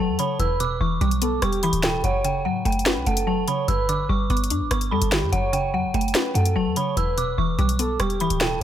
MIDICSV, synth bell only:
0, 0, Header, 1, 2, 480
1, 0, Start_track
1, 0, Tempo, 410959
1, 461, Time_signature, 4, 2, 24, 8
1, 10080, End_track
2, 0, Start_track
2, 0, Title_t, "Synth bell"
2, 0, Program_c, 0, 98
2, 0, Note_on_c, 0, 81, 93
2, 206, Note_off_c, 0, 81, 0
2, 225, Note_on_c, 0, 83, 86
2, 447, Note_off_c, 0, 83, 0
2, 466, Note_on_c, 0, 88, 84
2, 687, Note_off_c, 0, 88, 0
2, 706, Note_on_c, 0, 86, 99
2, 928, Note_off_c, 0, 86, 0
2, 943, Note_on_c, 0, 85, 85
2, 1166, Note_off_c, 0, 85, 0
2, 1181, Note_on_c, 0, 86, 84
2, 1633, Note_off_c, 0, 86, 0
2, 1662, Note_on_c, 0, 85, 92
2, 1885, Note_off_c, 0, 85, 0
2, 1907, Note_on_c, 0, 83, 86
2, 2128, Note_off_c, 0, 83, 0
2, 2146, Note_on_c, 0, 79, 86
2, 2367, Note_off_c, 0, 79, 0
2, 2391, Note_on_c, 0, 78, 90
2, 2610, Note_off_c, 0, 78, 0
2, 2627, Note_on_c, 0, 79, 82
2, 2848, Note_off_c, 0, 79, 0
2, 2863, Note_on_c, 0, 78, 84
2, 3085, Note_off_c, 0, 78, 0
2, 3106, Note_on_c, 0, 79, 77
2, 3555, Note_off_c, 0, 79, 0
2, 3582, Note_on_c, 0, 78, 88
2, 3805, Note_off_c, 0, 78, 0
2, 3823, Note_on_c, 0, 81, 84
2, 4046, Note_off_c, 0, 81, 0
2, 4063, Note_on_c, 0, 83, 76
2, 4286, Note_off_c, 0, 83, 0
2, 4301, Note_on_c, 0, 88, 86
2, 4524, Note_off_c, 0, 88, 0
2, 4544, Note_on_c, 0, 86, 80
2, 4766, Note_off_c, 0, 86, 0
2, 4783, Note_on_c, 0, 85, 79
2, 5006, Note_off_c, 0, 85, 0
2, 5025, Note_on_c, 0, 86, 78
2, 5475, Note_off_c, 0, 86, 0
2, 5502, Note_on_c, 0, 85, 81
2, 5725, Note_off_c, 0, 85, 0
2, 5740, Note_on_c, 0, 83, 85
2, 5964, Note_off_c, 0, 83, 0
2, 6220, Note_on_c, 0, 78, 105
2, 6444, Note_off_c, 0, 78, 0
2, 6462, Note_on_c, 0, 79, 82
2, 6685, Note_off_c, 0, 79, 0
2, 6705, Note_on_c, 0, 78, 83
2, 6927, Note_off_c, 0, 78, 0
2, 6946, Note_on_c, 0, 79, 85
2, 7395, Note_off_c, 0, 79, 0
2, 7420, Note_on_c, 0, 78, 80
2, 7644, Note_off_c, 0, 78, 0
2, 7663, Note_on_c, 0, 81, 91
2, 7886, Note_off_c, 0, 81, 0
2, 7905, Note_on_c, 0, 83, 81
2, 8127, Note_off_c, 0, 83, 0
2, 8145, Note_on_c, 0, 88, 82
2, 8367, Note_off_c, 0, 88, 0
2, 8386, Note_on_c, 0, 86, 94
2, 8607, Note_off_c, 0, 86, 0
2, 8623, Note_on_c, 0, 85, 86
2, 8845, Note_off_c, 0, 85, 0
2, 8860, Note_on_c, 0, 86, 87
2, 9312, Note_off_c, 0, 86, 0
2, 9342, Note_on_c, 0, 85, 93
2, 9565, Note_off_c, 0, 85, 0
2, 9587, Note_on_c, 0, 83, 85
2, 9808, Note_off_c, 0, 83, 0
2, 9827, Note_on_c, 0, 79, 85
2, 10048, Note_off_c, 0, 79, 0
2, 10080, End_track
0, 0, End_of_file